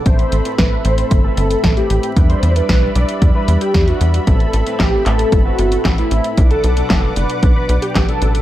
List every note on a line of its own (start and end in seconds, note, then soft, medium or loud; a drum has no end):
0.05 0.25 A1 loud
0.05 0.42 A2 medium
0.05 0.42 A3 medium
0.05 0.42 C4 medium
0.05 2.14 C4 medium
0.05 0.42 E4 medium
0.05 2.14 A4 medium
0.05 0.53 C5 loud
0.05 0.42 C5 medium
0.05 2.14 E5 medium
0.05 6.33 B5 medium
0.05 kick loud
0.05 closed hi-hat medium
0.19 closed hi-hat soft
0.32 0.42 A1 medium
0.32 closed hi-hat medium
0.45 0.82 A2 medium
0.45 0.82 A3 medium
0.45 0.82 C4 medium
0.45 0.82 E4 medium
0.45 0.82 B4 loud
0.45 closed hi-hat soft
0.58 0.77 A1 medium
0.58 0.82 B4 medium
0.58 kick loud
0.58 snare loud
0.58 closed hi-hat medium
0.84 1.04 A1 loud
0.84 1.21 A2 medium
0.84 1.21 A3 medium
0.84 1.21 C4 medium
0.84 1.21 E4 medium
0.84 1.20 C5 loud
0.84 1.21 C5 loud
0.84 closed hi-hat medium
0.98 closed hi-hat medium
1.11 1.30 G1 medium
1.11 kick loud
1.11 closed hi-hat medium
1.24 1.74 A2 medium
1.24 1.74 A3 medium
1.24 1.74 C4 medium
1.24 1.74 E4 medium
1.24 1.72 A4 loud
1.24 1.74 B4 medium
1.37 1.56 G1 loud
1.37 closed hi-hat medium
1.51 closed hi-hat medium
1.64 1.83 A1 loud
1.64 kick loud
1.64 snare loud
1.64 closed hi-hat medium
1.77 2.13 A2 medium
1.77 2.13 A3 medium
1.77 2.13 C4 medium
1.77 2.13 E4 medium
1.77 2.24 G4 loud
1.77 2.13 B4 medium
1.77 closed hi-hat soft
1.90 2.00 A1 medium
1.90 closed hi-hat medium
2.03 closed hi-hat soft
2.16 2.35 E2 loud
2.16 2.53 G3 medium
2.16 4.25 G3 medium
2.16 2.53 D4 medium
2.16 2.53 E4 medium
2.16 2.53 B4 medium
2.16 4.25 D5 medium
2.16 6.33 E5 medium
2.16 kick loud
2.16 closed hi-hat medium
2.30 2.53 C5 medium
2.30 closed hi-hat soft
2.43 2.62 E2 medium
2.43 closed hi-hat medium
2.56 2.92 G3 medium
2.56 2.92 D4 medium
2.56 2.92 E4 medium
2.56 2.91 B4 loud
2.56 2.92 B4 loud
2.56 closed hi-hat soft
2.69 2.88 B1 loud
2.69 kick loud
2.69 snare loud
2.69 closed hi-hat medium
2.95 3.05 B1 medium
2.95 3.32 G3 medium
2.95 3.32 D4 medium
2.95 3.32 E4 medium
2.95 3.32 B4 loud
2.95 3.31 D5 loud
2.95 closed hi-hat medium
3.09 closed hi-hat soft
3.22 3.31 E2 medium
3.22 kick loud
3.22 closed hi-hat medium
3.35 3.84 G3 medium
3.35 3.84 D4 medium
3.35 3.84 E4 medium
3.35 3.59 B4 medium
3.35 3.84 B4 medium
3.48 3.57 E2 medium
3.48 closed hi-hat medium
3.61 3.85 G4 medium
3.61 closed hi-hat medium
3.74 3.93 E2 medium
3.74 kick loud
3.74 snare loud
3.74 closed hi-hat medium
3.87 4.24 G3 medium
3.87 4.24 D4 medium
3.87 4.24 E4 medium
3.87 4.23 F#4 loud
3.87 4.24 B4 medium
3.87 closed hi-hat soft
4.01 4.20 E2 loud
4.01 closed hi-hat medium
4.14 closed hi-hat soft
4.27 4.46 A1 loud
4.27 4.63 A2 medium
4.27 4.63 A3 medium
4.27 6.35 C4 medium
4.27 4.63 C4 medium
4.27 4.63 E4 medium
4.27 4.74 A4 loud
4.27 6.35 A4 medium
4.27 4.63 B4 medium
4.27 kick loud
4.27 closed hi-hat medium
4.40 closed hi-hat soft
4.53 4.63 A1 medium
4.53 closed hi-hat medium
4.66 5.03 A2 medium
4.66 5.03 A3 medium
4.66 5.03 C4 medium
4.66 5.03 E4 medium
4.66 5.03 B4 loud
4.66 closed hi-hat soft
4.80 4.99 A1 medium
4.80 5.03 G4 medium
4.80 kick loud
4.80 snare loud
4.80 clap medium
4.80 closed hi-hat medium
5.05 5.25 A1 loud
5.05 5.42 A2 medium
5.05 5.42 A3 medium
5.05 5.42 C4 medium
5.05 5.42 E4 medium
5.05 5.41 A4 loud
5.05 5.42 B4 loud
5.05 clap medium
5.05 closed hi-hat medium
5.19 closed hi-hat soft
5.32 5.51 G1 medium
5.32 kick loud
5.32 closed hi-hat medium
5.45 5.95 A2 medium
5.45 5.95 A3 medium
5.45 5.95 C4 medium
5.45 5.95 E4 medium
5.45 5.93 F#4 loud
5.45 5.95 B4 medium
5.58 5.77 G1 loud
5.58 closed hi-hat medium
5.72 closed hi-hat medium
5.85 6.04 A1 loud
5.85 kick loud
5.85 snare loud
5.85 clap medium
5.85 closed hi-hat medium
5.98 6.34 A2 medium
5.98 6.34 A3 medium
5.98 6.34 C4 medium
5.98 6.45 E4 loud
5.98 6.34 E4 medium
5.98 6.34 B4 medium
5.98 closed hi-hat soft
6.11 6.21 A1 medium
6.11 closed hi-hat medium
6.24 closed hi-hat soft
6.37 6.56 B1 loud
6.37 6.74 B2 medium
6.37 6.74 F#3 medium
6.37 6.74 B3 medium
6.37 6.74 D4 medium
6.37 8.42 B4 medium
6.37 6.74 B4 medium
6.37 8.42 D5 medium
6.37 8.42 F#5 medium
6.37 8.42 D6 medium
6.37 kick loud
6.37 closed hi-hat medium
6.51 6.74 A4 medium
6.51 closed hi-hat soft
6.64 6.83 B1 medium
6.64 closed hi-hat medium
6.77 7.13 B2 medium
6.77 7.13 F#3 medium
6.77 7.13 B3 medium
6.77 7.13 D4 medium
6.77 7.12 A4 loud
6.77 7.13 B4 loud
6.77 closed hi-hat soft
6.90 7.09 F#1 medium
6.90 kick medium
6.90 snare loud
6.90 clap medium
6.90 closed hi-hat medium
7.16 7.26 F#1 medium
7.16 7.53 B2 medium
7.16 7.53 F#3 medium
7.16 7.53 B3 medium
7.16 7.53 D4 medium
7.16 7.52 B4 loud
7.16 7.53 B4 loud
7.16 closed hi-hat medium
7.30 closed hi-hat medium
7.43 7.52 B1 medium
7.43 kick loud
7.43 closed hi-hat medium
7.55 8.05 B2 medium
7.55 8.05 F#3 medium
7.55 8.05 B3 medium
7.55 8.05 D4 medium
7.55 7.80 B4 loud
7.55 8.05 B4 medium
7.69 7.78 B1 medium
7.69 closed hi-hat medium
7.82 8.06 G4 medium
7.82 closed hi-hat medium
7.95 8.05 A1 medium
7.95 kick loud
7.95 snare loud
7.95 clap medium
7.95 closed hi-hat medium
8.08 8.42 B2 medium
8.08 8.42 F#3 medium
8.08 8.42 B3 medium
8.08 8.42 D4 medium
8.08 8.42 A4 loud
8.08 8.42 B4 medium
8.08 closed hi-hat soft
8.22 8.41 A1 medium
8.22 closed hi-hat medium
8.35 closed hi-hat medium